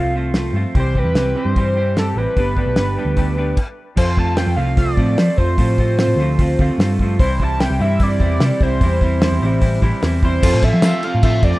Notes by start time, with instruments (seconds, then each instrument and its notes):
Already playing: picked electric bass C2, overdriven electric guitar F3 A3 C4 F4, analog synth lead F5
0.14 overdriven electric guitar F3 A3 C4 F4
0.34 overdriven electric guitar F3 A3 C4 F4, snare, open hi-hat
0.53 picked electric bass G2, overdriven electric guitar F3 A3 C4 F4
0.74 picked electric bass C2, overdriven electric guitar C3 E3 G3 C4 G4, kick, open hi-hat
0.80 analog synth lead C5
0.95 overdriven electric guitar C3 E3 G3 C4 G4, analog synth lead B4, kick
1.04 picked electric bass E2
1.14 picked electric bass C2, overdriven electric guitar C3 E3 G3 C4, snare, open hi-hat
1.18 overdriven electric guitar G4
1.35 overdriven electric guitar C3 E3 G3 C4 G4, analog synth lead B4
1.45 picked electric bass G2, analog synth lead C5
1.55 overdriven electric guitar C3 E3 G3 C4 G4, kick, open hi-hat
1.75 overdriven electric guitar C3 E3 G3 C4 G4
1.95 overdriven electric guitar C3 E3 G3 C4 G4, analog synth lead A4, snare, open hi-hat
2.15 picked electric bass A1, overdriven electric guitar C3 E3 G3 C4 G4, analog synth lead B4
2.36 picked electric bass G1, overdriven electric guitar G2 D3 G3 B3 D4 G4, clean electric guitar A3 B4, kick, open hi-hat
2.56 overdriven electric guitar G2 D3 G3 B3 D4 G4, clean electric guitar A3 B4, kick
2.66 picked electric bass B1
2.76 picked electric bass G1, overdriven electric guitar G2 D3 G3 B3 D4 G4, clean electric guitar A3 B4, snare, open hi-hat
2.96 overdriven electric guitar G2 D3 G3 B3 D4 G4, clean electric guitar A3 B4
3.05 picked electric bass D2
3.16 overdriven electric guitar G2 D3 G3 B3 D4 G4, clean electric guitar A3 B4, kick, open hi-hat
3.36 overdriven electric guitar G2 D3 G3 B3 D4 G4, clean electric guitar A3 B4
3.57 kick, crash
3.95 overdriven electric guitar F2 C3 F3 A3 C4 F4, picked electric bass F2, analog synth lead C5, kick, crash
4.15 overdriven electric guitar F2 C3 F3 A3 C4 F4, analog synth lead A5, kick
4.35 overdriven electric guitar F2 C3 F3 A3 C4 F4, analog synth lead G5, snare, open hi-hat
4.47 picked electric bass F2
4.55 picked electric bass C2, overdriven electric guitar F2 C3 F3 A3 C4 F4, analog synth lead F5
4.75 overdriven electric guitar F2 C3 F3 A3 C4 F4, analog synth lead D5, kick, open hi-hat
4.96 overdriven electric guitar F2 C3 F3 A3 C4 F4, picked electric bass A2, kick
5.16 overdriven electric guitar F2 C3 F3 A3 C4 F4, picked electric bass F3, snare, open hi-hat
5.36 overdriven electric guitar F2 C3 F3 A3 C4 F4, picked electric bass F2, analog synth lead C5, kick
5.57 overdriven electric guitar F2 C3 F3 A3 C4 F4, picked electric bass A2, kick, open hi-hat
5.78 overdriven electric guitar F2 C3 F3 A3 C4 F4, kick
5.98 overdriven electric guitar F2 C3 F3 A3 C4 F4, snare, open hi-hat
6.08 picked electric bass A2
6.16 picked electric bass D2, overdriven electric guitar F2 C3 F3 A3 C4
6.21 overdriven electric guitar F4
6.39 overdriven electric guitar F2 C3 F3 A3 C4 F4, kick, open hi-hat
6.58 picked electric bass D2, overdriven electric guitar F2 C3 F3 A3 C4 F4, kick
6.78 overdriven electric guitar F2 C3 F3 A3 C4 F4, picked electric bass G2, snare, open hi-hat
6.99 overdriven electric guitar F2 C3 F3 A3 C4 F4, kick
7.19 picked electric bass C2, overdriven electric guitar C3 E3 G3 C4 E4, analog synth lead C5, kick, open hi-hat
7.40 overdriven electric guitar C3 E3 G3 C4 E4, analog synth lead A5, kick
7.60 overdriven electric guitar C3 E3 G3 C4 E4, analog synth lead G5, snare, open hi-hat
7.70 picked electric bass C2
7.80 picked electric bass G2, overdriven electric guitar C3 E3 G3 C4 E4, analog synth lead E5
8.00 overdriven electric guitar C3 E3 G3 C4 E4, analog synth lead D5, kick, open hi-hat
8.20 picked electric bass E2, overdriven electric guitar C3 E3 G3 C4, kick
8.24 overdriven electric guitar E4
8.40 picked electric bass C3, overdriven electric guitar C3 E3 G3 C4 E4, snare, open hi-hat
8.60 picked electric bass C2, overdriven electric guitar C3 E3 G3 C4 E4, analog synth lead C5, kick
8.81 picked electric bass E2, overdriven electric guitar C3 E3 G3 C4 E4, kick, open hi-hat
9.01 overdriven electric guitar C3 E3 G3 C4 E4, kick
9.22 overdriven electric guitar C3 E3 G3 C4 E4, snare, open hi-hat
9.31 picked electric bass E2
9.42 picked electric bass A1, overdriven electric guitar C3 E3 G3 C4 E4
9.60 overdriven electric guitar C3 E3 G3 C4 E4, kick, open hi-hat
9.82 picked electric bass A1, overdriven electric guitar C3 E3 G3 C4 E4, kick
10.02 picked electric bass E2, overdriven electric guitar C3 E3 G3 C4 E4, snare, open hi-hat
10.22 overdriven electric guitar C3 E3 G3 C4 E4, analog synth lead C5, kick
10.42 picked electric bass F2, overdriven electric guitar F2 C3 F3 A3 C4 F4, synth bell A4, kick, crash
10.54 picked electric bass A2
10.61 overdriven electric guitar F2 C3 F3 A3 C4 F4, analog synth lead E5, kick, snare, crash
10.74 picked electric bass F3
10.82 overdriven electric guitar F2 C3 F3 A3 C4 F4, snare, tambourine, crash
11.02 overdriven electric guitar F2 C3 F3 A3 C4 F4, analog synth lead F5, crash
11.15 picked electric bass A2
11.22 overdriven electric guitar F2 C3 F3 A3 C4 F4, analog synth lead E5, kick, crash
11.42 overdriven electric guitar F2 C3 F3 A3 C4 F4, picked electric bass F2, analog synth lead D5, kick, crash
11.52 snare